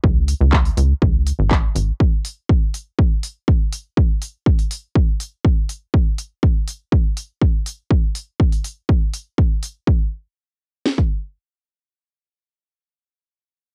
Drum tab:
HH |--o--oo---o---o-|--o---o---o---o-|--o--oo---o---o-|--o---o---o---o-|
CP |----x-------x---|----------------|----------------|----------------|
SD |----------------|----------------|----------------|----------------|
BD |o---o---o---o---|o---o---o---o---|o---o---o---o---|o---o---o---o---|

HH |--o--oo---o---o-|----------------|----------------|
CP |----------------|----------------|----------------|
SD |----------------|--------o-------|----------------|
BD |o---o---o---o---|o--------o------|----------------|